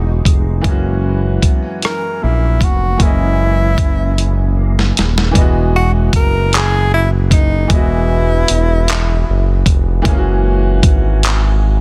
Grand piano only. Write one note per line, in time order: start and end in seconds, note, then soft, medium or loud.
0.00 0.59 E3 medium
0.00 0.60 G#3 medium
0.00 0.61 B3 medium
0.00 0.62 D#4 medium
0.00 0.66 G4 medium
0.00 0.67 G#4 medium
0.61 2.94 E3 medium
0.61 2.95 G#3 medium
0.66 2.96 A#3 medium
0.66 2.97 C#4 medium
0.70 2.99 F#4 medium
2.97 5.30 E3 medium
2.97 5.31 G#3 medium
3.02 5.32 A#3 medium
3.02 5.33 C#4 medium
3.06 5.34 D#5 medium
5.31 7.64 E3 medium
5.31 5.41 G3 medium
5.36 7.66 B3 medium
5.36 7.68 D#5 medium
5.40 7.68 G#3 medium
5.40 7.69 F#4 medium
7.68 10.00 E3 medium
7.68 10.01 G#3 medium
7.72 10.02 B3 medium
7.72 10.03 D#5 medium
7.76 10.04 F#4 medium
10.02 11.81 E3 medium
10.02 11.81 G#3 medium
10.06 11.81 A#3 medium
10.06 11.81 C#4 medium
10.11 10.14 F4 medium
10.17 11.81 F#4 medium